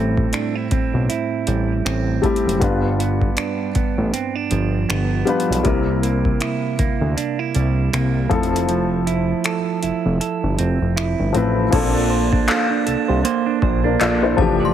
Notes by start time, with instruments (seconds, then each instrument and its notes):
Already playing: analog synth bass A1, clean electric guitar A2 C4 E4 A4, grand piano G3 A3 C4 E4 A4
0.18 kick
0.33 clean electric guitar D4, finger snap, closed hi-hat
0.55 clean electric guitar E4
0.71 analog synth bass B1, clean electric guitar C4, kick, closed hi-hat
0.94 analog synth bass B1
1.09 clean electric guitar E4, closed hi-hat
1.47 analog synth bass A1, clean electric guitar G3, closed hi-hat
1.85 analog synth bass A1, clean electric guitar C4, finger snap, closed hi-hat
2.22 grand piano G3 A3 C4 E4 G4, clean electric guitar G3, kick, closed hi-hat
2.36 closed hi-hat
2.46 analog synth bass F#1, closed hi-hat
2.59 analog synth bass G1, clean electric guitar G2, grand piano G3 B3 D4 F4 B4, kick, closed hi-hat
2.99 clean electric guitar B3, closed hi-hat
3.22 kick
3.37 clean electric guitar D4, finger snap, closed hi-hat
3.75 analog synth bass A1, clean electric guitar B3, kick, closed hi-hat
3.98 analog synth bass A1
4.13 clean electric guitar C4, closed hi-hat
4.35 clean electric guitar D4
4.51 analog synth bass G1, clean electric guitar F3, closed hi-hat
4.89 analog synth bass G1, clean electric guitar B3, finger snap, closed hi-hat
5.25 clean electric guitar F3, grand piano G3 B3 D4 F4, closed hi-hat
5.29 grand piano B4
5.40 closed hi-hat
5.50 analog synth bass B1, closed hi-hat
5.63 analog synth bass C2, clean electric guitar C3, grand piano G3 A#3 C4 E4 A#4, kick, closed hi-hat
6.03 clean electric guitar A#3, closed hi-hat
6.25 kick
6.41 clean electric guitar E4, finger snap, closed hi-hat
6.79 analog synth bass D2, clean electric guitar A#3, kick, closed hi-hat
7.01 analog synth bass D2
7.17 clean electric guitar D4, closed hi-hat
7.39 clean electric guitar E4
7.55 analog synth bass C2, clean electric guitar G3, closed hi-hat
7.93 analog synth bass C2, clean electric guitar A#3, finger snap, closed hi-hat
8.29 analog synth bass F1, grand piano F3 A3 C4 E4 A4, clean electric guitar F3, kick, closed hi-hat
8.43 closed hi-hat
8.56 closed hi-hat
8.69 clean electric guitar F3, closed hi-hat
9.07 clean electric guitar E4, closed hi-hat
9.44 clean electric guitar A4, finger snap, closed hi-hat
9.83 analog synth bass F1, clean electric guitar E4, closed hi-hat
10.05 analog synth bass F1
10.21 clean electric guitar A4, closed hi-hat
10.43 analog synth bass G1
10.59 analog synth bass F1, clean electric guitar C4, closed hi-hat
10.81 analog synth bass F1
10.96 clean electric guitar E4, finger snap, closed hi-hat
11.19 analog synth bass G1
11.33 analog synth bass A1, grand piano F3 A3 C4 E4, clean electric guitar C4, closed hi-hat
11.37 grand piano B4
11.70 analog synth bass A#1, grand piano F3 A#3 C4 D4 A4, clean electric guitar A#3 C5, kick, closed hi-hat, crash
11.94 clean electric guitar D4
12.10 clean electric guitar C5
12.32 clean electric guitar D4, kick
12.48 clean electric guitar A4, synth bell F5, clap, closed hi-hat
12.70 clean electric guitar D4
12.86 analog synth bass C2, clean electric guitar A4, closed hi-hat
13.08 analog synth bass C2, clean electric guitar C5
13.24 clean electric guitar A#3 C5, closed hi-hat
13.46 clean electric guitar D4
13.62 analog synth bass A#1, clean electric guitar C5, kick
13.84 clean electric guitar D4, grand piano D4 A#4
14.00 analog synth bass A#1, grand piano F4 D5, clean electric guitar A4, clap, closed hi-hat
14.22 clean electric guitar D4, grand piano E4 C5
14.37 analog synth bass F1, grand piano E3 F3 A3 D4, clean electric guitar F3, synth bell A5, kick
14.41 grand piano G4
14.60 clean electric guitar D5
14.65 synth bell C6